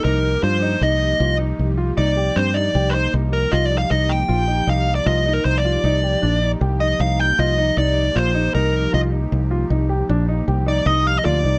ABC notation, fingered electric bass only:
X:1
M:5/4
L:1/8
Q:1/4=155
K:Eb
V:1 name="Fingered electric bass" clef=bass
C,,2 G,,2 C,,2 C,,2 C,,2 | C,,2 G,,2 C,,2 C,,2 C,,2 | C,,2 B,,,2 C,,2 C,,2 C,,2 | C,,2 B,,,2 C,,2 C,,2 C,,2 |
C,,2 B,,,2 C,,2 C,,2 C,,2 | C,,2 B,,,2 C,,2 C,,2 D,, C,, |]